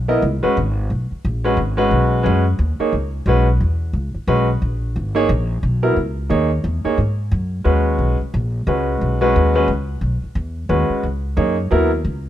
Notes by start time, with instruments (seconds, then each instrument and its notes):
Already playing: upright bass B1
0.08 grand piano B3 E4 A#4 D#5
0.22 upright bass C#2
0.43 grand piano G#3 C#4 F#4 B4, muted upright bass stroke
0.57 upright bass G#1
0.90 upright bass B1
1.11 muted upright bass stroke
1.25 upright bass A#1
1.44 grand piano G#3 C#4 F#4 B4
1.57 upright bass G#1
1.77 grand piano G#3 C#4 F#4 B4
1.91 upright bass B1
2.23 upright bass F#2, grand piano G#3 C#4 F#4 B4
2.59 upright bass D#2
2.79 grand piano A#3 D#4 G#4 C#5, muted upright bass stroke
2.93 upright bass C#2
3.26 upright bass B1, grand piano G#3 C#4 F#4 B4
3.60 upright bass E2
3.93 upright bass C#2
4.15 muted upright bass stroke
4.27 upright bass B1, grand piano G#3 C#4 F#4 B4
4.62 upright bass A#1
4.96 upright bass G#1
5.15 grand piano A#3 D#4 G#4 C#5
5.29 upright bass A#1
5.63 upright bass B1
5.83 grand piano F#3 B3 E4 A#4
5.96 upright bass C#2
6.29 upright bass D#2, grand piano A#3 D#4 G#4 C#5
6.64 upright bass E2
6.85 grand piano A#3 D#4 G#4 C#5, muted upright bass stroke
6.98 upright bass G#2
7.31 upright bass F#2
7.64 upright bass D#2, grand piano G#3 C#4 F#4 B4
7.98 upright bass B1
8.21 muted upright bass stroke
8.34 upright bass A#1
8.67 upright bass C#2, grand piano G#3 C#4 F#4 B4
9.01 upright bass B1
9.21 grand piano G#3 C#4 F#4 B4
9.36 upright bass D#2
9.55 grand piano G#3 C#4 F#4 B4
9.68 upright bass C#2
10.01 upright bass B1
10.23 muted upright bass stroke
10.35 upright bass E2
10.69 upright bass D#2, grand piano G#3 C#4 F#4 B4
10.90 muted upright bass stroke
11.03 upright bass C#2
11.37 upright bass F#2, grand piano A#3 D#4 G#4 C#5
11.71 upright bass D#2, grand piano F#3 B3 E4 A#4
12.05 upright bass C#2